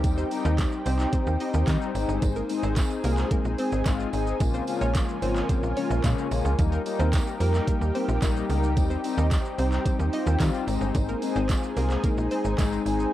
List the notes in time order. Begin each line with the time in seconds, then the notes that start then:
Already playing: D#4 G4 G5, downlifter
0.04 D#2 G3 C4 D#4 C5, kick, closed hi-hat, tambourine, shaker
0.18 C4 C5, shaker
0.31 G3 C4 D#4, open hi-hat, tambourine, shaker
0.45 D#2 D#4 D#5, shaker
0.58 G3 C4 D#4, kick, clap, closed hi-hat, tambourine, shaker
0.72 shaker
0.86 C2 G3 C4 D#4 C5, open hi-hat, tambourine, shaker
0.99 clap, shaker
1.13 G3 C4 D#4 C5, kick, closed hi-hat, shaker
1.27 D#2, shaker
1.40 G3 C4 D#4 D#5, open hi-hat, shaker
1.54 D#2, shaker
1.67 D#3 G3 C4 D#4, kick, clap, closed hi-hat, tambourine, shaker
1.82 shaker
1.95 G#1 G#3 C4 D#4 G#4 G#5, open hi-hat, tambourine, shaker
2.09 G1, shaker
2.22 G#1, kick, closed hi-hat, tambourine, shaker
2.36 A#3 A#4, shaker
2.49 G#3 C4 D#4, open hi-hat, tambourine, shaker
2.63 G#1 C4 C5, shaker
2.76 G#3 C4 D#4, kick, clap, closed hi-hat, tambourine, shaker
2.90 shaker
3.04 C2 G#3 A#3 C4 F4 A#4, open hi-hat, tambourine, shaker
3.18 clap, shaker
3.31 G#3 A#3 C4 D#4 A#4, kick, closed hi-hat, shaker
3.45 A#1, shaker
3.58 G#3 C4 D#4 C5, open hi-hat, tambourine, shaker
3.72 G#1, shaker
3.86 G#1 G#3 C4 F4, kick, clap, closed hi-hat, tambourine, shaker
4.00 shaker
4.13 G#1 G#3 C4 D#4, open hi-hat, tambourine, shaker
4.27 shaker
4.40 A#1 C#3 F3 G#3 A#3 F4 A#4 C#5, kick, closed hi-hat, tambourine, shaker
4.54 C4 C5, shaker
4.67 C#3 F3 G#3 A#3 F4, open hi-hat, tambourine, shaker
4.81 A#1 C#4 C#5, shaker
4.94 C#3 F3 G#3 A#3 F4, kick, clap, closed hi-hat, tambourine, shaker
5.09 shaker
5.22 G#1 C#3 F3 G#3 A#3 C4 F4 C5, open hi-hat, tambourine, shaker
5.36 clap, shaker
5.49 C#3 F3 G#3 A#3 C4 F4 C5, kick, closed hi-hat, tambourine, shaker
5.63 A#1, shaker
5.76 C#3 F3 G#3 A#3 C#4 F4 C#5, open hi-hat, tambourine, shaker
5.90 A#1, shaker
6.04 A#2 C#3 F3 G#3 A#3 C#4, kick, clap, closed hi-hat, tambourine, shaker
6.18 shaker
6.31 A#1 C#3 F3 G#3 A#3 F4, open hi-hat, tambourine, shaker
6.45 C#2, shaker
6.58 D#2 G3 A#3 D#4 G4 A#4 G5, kick, closed hi-hat, tambourine, shaker
6.72 A#3 A#4, shaker
6.86 G3 A#3 D#4, open hi-hat, tambourine, shaker
6.99 D#2 C4 C5, shaker
7.13 G3 A#3 D#4, kick, clap, closed hi-hat, tambourine, shaker
7.27 shaker
7.40 F2 G3 A#3 D#4 A#4, open hi-hat, tambourine, shaker
7.54 clap, shaker
7.68 G3 A#3 D#4 A#4, kick, closed hi-hat, shaker
7.81 D#2, shaker
7.95 G3 A#3 C4 C5, open hi-hat, shaker
8.08 A#1, shaker
8.22 A#1 G3 A#3 D#4, kick, clap, closed hi-hat, tambourine, shaker
8.36 shaker
8.49 C#2 G3 A#3 D#4, open hi-hat, tambourine, shaker
8.64 shaker
8.76 D#2 G3 C4 D#4 C5, kick, closed hi-hat, tambourine, shaker
8.90 C4 C5, shaker
9.03 G3 C4 D#4, open hi-hat, tambourine, shaker
9.18 D#2 D#4 D#5, shaker
9.31 G3 C4 D#4, kick, clap, closed hi-hat, tambourine, shaker
9.45 shaker
9.58 C2 G3 C4 D#4 C5, open hi-hat, tambourine, shaker
9.72 clap, shaker
9.85 G3 C4 D#4 C5, kick, closed hi-hat, tambourine, shaker
9.99 D#2, shaker
10.13 G3 C4 D#4 F4 D#5, open hi-hat, shaker
10.27 D#2, shaker
10.40 D#3 G3 C4 F4, kick, clap, closed hi-hat, tambourine, shaker
10.54 shaker
10.67 G#1 G#3 C4 D#4 G#4 G#5, open hi-hat, tambourine, shaker
10.81 G1, shaker
10.95 G#1, kick, closed hi-hat, tambourine, shaker
11.09 A#3 A#4, shaker
11.22 G#3 C4 D#4, open hi-hat, tambourine, shaker
11.36 G#1 C4 C5, shaker
11.49 G#3 C4 F4, kick, clap, closed hi-hat, tambourine, shaker
11.63 shaker
11.76 C2 G#3 A#3 C4 F4 A#4, open hi-hat, tambourine, shaker
11.90 clap, shaker
12.04 G#3 A#3 C4 D#4 A#4, kick, closed hi-hat, tambourine, shaker
12.18 A#1, shaker
12.31 G#3 C4 D#4 C5, open hi-hat, shaker
12.45 G#1, shaker
12.58 G#1 G#3 C4 D#4, kick, clap, closed hi-hat, tambourine, shaker
12.72 shaker
12.86 G#1 G#3 C4 D#4, open hi-hat, tambourine, shaker
13.00 shaker